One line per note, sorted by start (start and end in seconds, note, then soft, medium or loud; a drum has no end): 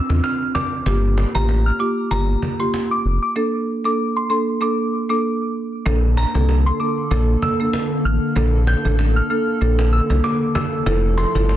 0.10 0.21 E2 medium
0.10 0.30 C4 medium
0.10 0.30 D4 medium
0.10 0.30 F4 medium
0.10 cajon bass medium
0.24 0.39 F6 medium
0.24 cajon slap medium
0.55 0.70 D6 medium
0.55 cajon bass loud
0.55 cajon slap medium
0.86 1.25 G1 loud
0.86 1.31 A#3 medium
0.86 1.31 F4 medium
0.86 1.31 G4 loud
0.86 cajon bass loud
1.18 cajon slap medium
1.35 1.71 A1 medium
1.35 1.55 A#3 medium
1.35 1.55 F4 medium
1.35 1.55 G4 medium
1.35 1.47 A#5 medium
1.35 cajon bass loud
1.49 cajon slap medium
1.66 1.78 F6 medium
1.79 2.02 A#3 medium
1.79 2.02 F4 medium
1.79 2.02 G4 medium
1.79 1.96 D6 medium
2.11 2.36 G1 loud
2.11 2.33 A#3 medium
2.11 2.33 F4 medium
2.11 2.34 G4 loud
2.11 2.27 A#5 medium
2.11 cajon bass medium
2.42 cajon bass medium
2.59 2.80 A#3 medium
2.59 2.80 F4 medium
2.59 2.80 G4 medium
2.59 2.72 C6 medium
2.74 cajon slap medium
2.91 3.04 D6 medium
3.05 3.19 F1 medium
3.23 3.35 D6 medium
3.36 3.80 A#3 medium
3.36 3.81 D4 medium
3.36 3.81 A4 loud
3.85 4.05 A#3 medium
3.85 4.05 D4 medium
3.85 4.05 A4 medium
3.85 3.97 D6 medium
4.17 4.29 C6 medium
4.29 4.52 A#3 medium
4.29 4.52 D4 medium
4.29 4.52 A4 medium
4.29 4.46 C6 medium
4.61 4.83 A#3 medium
4.61 4.83 D4 medium
4.61 4.84 A4 loud
4.61 4.77 D6 medium
5.09 5.30 A#3 medium
5.09 5.30 D4 medium
5.09 5.30 A4 medium
5.09 5.22 D6 medium
5.86 6.25 A#1 loud
5.86 10.82 D3 medium
5.86 6.30 A#3 medium
5.86 10.82 A#3 medium
5.86 6.31 D4 medium
5.86 6.31 A4 loud
5.86 8.34 A4 medium
5.86 cajon bass loud
6.04 cajon slap soft
6.17 6.33 A#5 medium
6.17 cajon slap loud
6.35 6.71 C2 medium
6.35 6.55 A#3 medium
6.35 6.55 D4 medium
6.35 6.55 A4 medium
6.35 cajon bass medium
6.49 cajon slap medium
6.66 6.79 C6 medium
6.66 cajon slap soft
6.80 7.02 A#3 medium
6.80 7.02 D4 medium
6.80 7.02 A4 medium
6.80 6.96 D6 medium
6.80 cajon slap soft
6.98 cajon slap soft
7.11 7.36 A#1 loud
7.11 7.33 A#3 medium
7.11 7.33 D4 medium
7.11 7.34 A4 loud
7.11 cajon bass loud
7.29 cajon slap soft
7.42 7.58 E6 medium
7.42 cajon bass medium
7.60 7.80 A#3 medium
7.60 7.80 D4 medium
7.60 7.80 A4 medium
7.60 cajon slap soft
7.73 cajon slap medium
7.91 cajon slap soft
8.04 8.19 A1 medium
8.04 8.21 F6 medium
8.04 cajon slap soft
8.22 cajon slap soft
8.36 8.75 A#1 loud
8.36 8.81 A#3 medium
8.36 8.81 D4 medium
8.36 10.84 A4 medium
8.36 8.81 A4 loud
8.36 cajon bass loud
8.54 cajon slap soft
8.67 8.83 G6 medium
8.67 cajon slap medium
8.85 9.21 A1 medium
8.85 9.05 A#3 medium
8.85 9.05 D4 medium
8.85 9.05 A4 medium
8.85 cajon bass loud
8.99 cajon slap medium
9.16 9.28 F6 medium
9.16 cajon slap soft
9.30 9.52 A#3 medium
9.30 9.52 D4 medium
9.30 9.53 A4 medium
9.30 9.46 F6 medium
9.30 cajon slap soft
9.48 cajon slap soft
9.61 10.01 A#1 loud
9.61 9.84 A#3 medium
9.61 9.84 D4 medium
9.61 9.84 A4 loud
9.61 cajon slap soft
9.79 cajon slap loud
9.93 10.08 E6 medium
9.93 cajon slap soft
10.10 10.21 C2 medium
10.10 10.30 A#3 medium
10.10 10.30 D4 medium
10.10 10.30 A4 medium
10.10 cajon bass medium
10.24 10.39 D6 medium
10.24 cajon slap loud
10.42 cajon slap soft
10.55 10.71 E6 medium
10.55 cajon bass loud
10.55 cajon slap loud
10.73 cajon slap soft
10.86 11.26 F1 loud
10.86 11.57 F3 medium
10.86 11.57 A3 medium
10.86 11.31 E4 medium
10.86 11.31 F4 medium
10.86 11.57 A4 medium
10.86 11.31 A4 loud
10.86 cajon bass loud
11.04 cajon slap soft
11.18 11.33 C6 medium
11.18 cajon slap loud
11.35 11.57 G1 medium
11.35 11.55 E4 medium
11.35 11.55 F4 medium
11.35 11.55 A4 medium
11.35 cajon bass loud
11.49 cajon slap medium